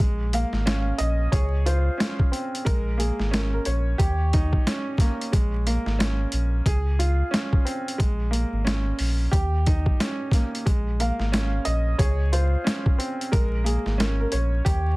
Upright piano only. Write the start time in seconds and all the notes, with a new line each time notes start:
0.34 F5
0.98 D#5
1.32 C#5
1.66 C5
2.66 A#4
2.99 G#4
3.32 A#4
3.53 A#4
3.66 C#5
11.01 F5
11.65 D#5
11.98 C#5
12.33 C5
13.32 A#4
13.66 G#4
13.99 A#4
14.20 A#4
14.32 C#5